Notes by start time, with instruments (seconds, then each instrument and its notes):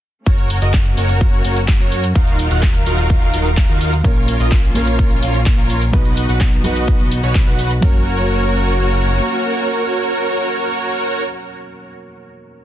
0.26 analog synth bass F#1, string section A#3 C#4 F#4, supersaw synth F#4 A#4 C#5, kick, closed hi-hat, shaker
0.38 closed hi-hat, shaker
0.50 open hi-hat
0.62 analog synth bass F#1, supersaw synth F#4 A#4 D#5, closed hi-hat, shaker
0.74 kick, clap, closed hi-hat, shaker
0.86 closed hi-hat, shaker
0.97 analog synth bass F#1, supersaw synth F#4 A#4 C#5, open hi-hat
1.09 closed hi-hat, shaker
1.21 kick, closed hi-hat, shaker
1.33 closed hi-hat, shaker
1.45 analog synth bass F#1, supersaw synth F#4 A#4 C#5, open hi-hat
1.56 closed hi-hat, shaker
1.68 kick, clap, closed hi-hat, shaker
1.80 analog synth bass F#2, supersaw synth F#4 A#4 C#5, closed hi-hat, shaker
1.92 open hi-hat
2.04 closed hi-hat, shaker
2.15 analog synth bass D#1, string section D#3 F#3 D#4 A#4 F5, supersaw synth D#4 F4 F#4 A#4 F5, kick, closed hi-hat, shaker
2.27 closed hi-hat, shaker
2.39 open hi-hat
2.51 analog synth bass D#1, supersaw synth D#4 F4 F#4 A#4 F#5, closed hi-hat, shaker
2.63 kick, clap, closed hi-hat, shaker
2.75 closed hi-hat, shaker
2.86 analog synth bass D#1, supersaw synth D#4 F4 F#4 A#4 F5, open hi-hat
2.98 closed hi-hat, shaker
3.10 kick, closed hi-hat, shaker
3.22 closed hi-hat, shaker
3.34 analog synth bass D#1, supersaw synth D#4 F4 F#4 A#4 F5, open hi-hat
3.45 closed hi-hat, shaker
3.57 kick, clap, closed hi-hat, shaker
3.69 analog synth bass D#2, supersaw synth D#4 F4 F#4 A#4 F5, closed hi-hat, shaker
3.81 open hi-hat
3.93 closed hi-hat, shaker
4.03 analog synth bass A#1, grand piano A#2 F3 A#3 C#4 A#4, string section A#3 C#4 F4, supersaw synth F4 A#4 C#5, kick, closed hi-hat, shaker
4.16 closed hi-hat, shaker
4.28 open hi-hat
4.40 analog synth bass A#1, supersaw synth F4 A#4 D#5, closed hi-hat, shaker
4.51 kick, clap, closed hi-hat, shaker
4.63 closed hi-hat, shaker
4.74 analog synth bass A#1, grand piano A#2 F3 A#3 C#4 A#4, supersaw synth F4 A#4 C#5, open hi-hat
4.87 closed hi-hat, shaker
4.99 kick, closed hi-hat, shaker
5.11 closed hi-hat, shaker
5.23 analog synth bass A#1, supersaw synth F4 A#4 C#5, open hi-hat
5.34 closed hi-hat, shaker
5.46 kick, clap, closed hi-hat, shaker
5.58 analog synth bass A#1, supersaw synth F4 A#4 C#5, closed hi-hat, shaker
5.70 open hi-hat
5.82 closed hi-hat, shaker
5.92 analog synth bass B1, grand piano B2 F#3 B3 D#4 B4, string section B3 D#4 F#4, supersaw synth F#4 B4 D#5, kick, closed hi-hat, shaker
6.05 closed hi-hat, shaker
6.17 open hi-hat
6.29 analog synth bass B1, supersaw synth F#4 B4 F#5, closed hi-hat, shaker
6.40 kick, clap, closed hi-hat, shaker
6.52 closed hi-hat, shaker
6.63 analog synth bass B1, grand piano B2 F#3 B3 D#4 B4, supersaw synth F#4 B4 D#5, open hi-hat
6.76 closed hi-hat, shaker
6.88 kick, closed hi-hat, shaker
7.00 closed hi-hat, shaker
7.12 open hi-hat
7.23 analog synth bass B1, supersaw synth F#4 B4 C#5, closed hi-hat, shaker
7.35 kick, clap, closed hi-hat, shaker
7.47 analog synth bass B1, supersaw synth F#4 B4 F#5, closed hi-hat, shaker
7.59 open hi-hat
7.71 closed hi-hat, shaker
7.81 analog synth bass F#1, grand piano F#3 A#3 C#4 A#4, string section A#3 C#4 F#4, supersaw synth F#4 A#4 C#5, kick, open hi-hat